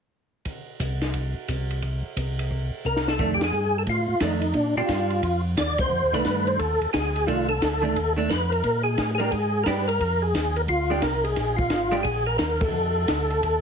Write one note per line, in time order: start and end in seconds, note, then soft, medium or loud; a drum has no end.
0.45 kick soft
0.45 ride soft
0.80 1.34 C2 medium
0.80 kick soft
0.80 hi-hat pedal medium
0.80 ride medium
1.01 snare soft
1.01 ride soft
1.14 kick soft
1.14 ride soft
1.48 2.03 C2 medium
1.48 kick soft
1.48 hi-hat pedal soft
1.48 ride medium
1.71 ride soft
1.82 kick soft
1.82 ride soft
2.16 2.71 C2 medium
2.16 kick soft
2.16 hi-hat pedal medium
2.16 ride medium
2.39 ride soft
2.51 kick soft
2.85 3.39 C2 medium
2.85 3.08 A#4 medium
2.85 hi-hat pedal medium
2.96 snare soft
3.08 3.31 A4 medium
3.08 snare medium
3.19 3.52 F2 medium
3.19 3.39 D#3 soft
3.19 3.39 A3 soft
3.19 3.39 D4 soft
3.19 kick medium
3.19 ride soft
3.34 3.42 G4 medium
3.41 3.77 G#4 loud
3.41 snare medium
3.41 ride medium
3.52 3.86 G2 medium
3.52 hi-hat pedal soft
3.78 3.83 A4 medium
3.87 4.07 A2 medium
3.87 4.23 F4 medium
3.87 kick soft
3.87 ride medium
4.08 4.14 A2 soft
4.20 4.54 F2 medium
4.20 4.40 D#3 soft
4.20 4.41 A3 soft
4.20 4.41 D4 soft
4.20 4.56 D#4 medium
4.20 kick soft
4.20 snare medium
4.20 hi-hat pedal medium
4.20 ride medium
4.42 ride soft
4.54 4.75 A#2 medium
4.54 4.75 D4 loud
4.54 kick soft
4.54 ride soft
4.76 4.82 A#2 soft
4.76 5.21 D4 medium
4.76 5.41 F4 medium
4.76 5.21 G4 medium
4.89 5.22 G2 medium
4.89 kick soft
4.89 snare medium
4.89 hi-hat pedal soft
4.89 ride medium
5.10 ride soft
5.23 5.56 F2 medium
5.23 kick soft
5.23 ride medium
5.57 5.77 D#2 medium
5.57 5.80 D5 medium
5.57 kick soft
5.57 snare medium
5.57 hi-hat pedal soft
5.57 ride medium
5.78 5.85 D#2 soft
5.78 6.14 C5 medium
5.78 kick medium
5.78 ride medium
5.90 6.01 F2 medium
6.01 6.13 D#2 medium
6.12 6.23 C2 medium
6.12 6.57 D#3 soft
6.12 6.57 A3 medium
6.12 6.57 D4 medium
6.12 6.49 B4 loud
6.12 snare soft
6.25 6.58 G2 medium
6.25 kick soft
6.25 snare medium
6.25 hi-hat pedal medium
6.25 ride medium
6.47 6.60 C5 medium
6.47 ride soft
6.59 6.79 D#2 medium
6.59 6.91 A4 medium
6.59 kick soft
6.59 ride medium
6.80 6.87 D#2 soft
6.80 ride soft
6.93 7.26 D2 medium
6.93 7.28 G#4 medium
6.93 kick soft
6.93 snare medium
6.93 hi-hat pedal medium
6.93 ride medium
7.16 ride soft
7.27 7.60 C2 medium
7.27 7.47 D#3 soft
7.27 7.47 A3 soft
7.27 7.47 D4 soft
7.27 7.47 F4 loud
7.27 kick soft
7.27 ride soft
7.49 8.13 A4 medium
7.62 7.94 D2 medium
7.62 kick soft
7.62 snare medium
7.62 hi-hat pedal soft
7.62 ride medium
7.82 7.93 D#3 medium
7.82 7.94 A3 medium
7.82 7.94 D4 medium
7.82 ride soft
7.96 8.29 D#2 medium
7.96 kick soft
7.96 ride medium
8.16 8.28 D#3 soft
8.16 8.28 A3 medium
8.16 8.28 D4 medium
8.29 8.63 F2 medium
8.29 8.52 B4 medium
8.29 kick soft
8.29 snare medium
8.29 hi-hat pedal medium
8.29 ride medium
8.50 8.82 A#4 medium
8.50 ride soft
8.64 8.97 A#2 medium
8.64 kick soft
8.64 ride soft
8.84 9.11 G#4 medium
8.98 9.31 A2 medium
8.98 kick soft
8.98 snare medium
8.98 hi-hat pedal soft
8.98 ride medium
9.15 9.20 G#4 medium
9.15 9.31 A#4 medium
9.20 9.30 G#3 medium
9.20 9.31 D4 medium
9.20 9.31 G4 medium
9.20 ride soft
9.31 9.65 G#2 medium
9.31 9.63 G#4 medium
9.31 kick soft
9.31 ride medium
9.64 9.99 G2 medium
9.64 9.86 G#3 medium
9.64 9.86 D4 medium
9.64 9.66 A#4 medium
9.64 9.86 B4 medium
9.64 kick soft
9.64 snare medium
9.64 hi-hat pedal medium
9.64 ride medium
9.68 9.86 G4 medium
9.88 10.23 A#4 medium
9.88 ride soft
10.00 10.33 F2 medium
10.00 kick soft
10.00 ride soft
10.22 10.57 G#4 medium
10.34 10.67 D#2 medium
10.34 kick soft
10.34 snare medium
10.34 hi-hat pedal medium
10.34 ride medium
10.56 10.62 A#4 medium
10.56 ride soft
10.68 11.01 D2 medium
10.68 11.04 F4 medium
10.68 kick soft
10.68 ride medium
10.90 11.01 G#3 medium
10.90 11.01 D4 medium
10.90 11.02 G4 medium
11.02 11.35 C2 medium
11.02 11.25 A#4 medium
11.02 kick soft
11.02 snare medium
11.02 hi-hat pedal medium
11.02 ride medium
11.24 11.56 G#4 medium
11.24 ride soft
11.36 11.70 A#1 medium
11.36 kick soft
11.36 snare soft
11.36 ride soft
11.56 12.00 F4 medium
11.56 kick medium
11.70 12.04 G#1 medium
11.70 kick soft
11.70 snare medium
11.70 hi-hat pedal medium
11.70 ride medium
11.92 12.03 G#3 medium
11.92 12.03 D4 medium
11.92 12.04 G4 medium
11.92 ride soft
12.03 12.38 A#1 medium
12.03 12.27 G#4 medium
12.03 kick soft
12.03 ride medium
12.26 12.37 A#4 medium
12.38 12.72 D#2 medium
12.38 12.61 A#4 medium
12.38 kick soft
12.38 snare medium
12.38 hi-hat pedal medium
12.38 ride medium
12.60 13.61 A4 medium
12.60 kick medium
12.60 ride medium
12.72 13.06 F2 medium
13.08 13.41 D2 medium
13.08 kick soft
13.08 snare medium
13.08 hi-hat pedal medium
13.08 ride medium
13.30 ride soft
13.42 13.61 D#2 medium
13.42 kick soft
13.42 ride soft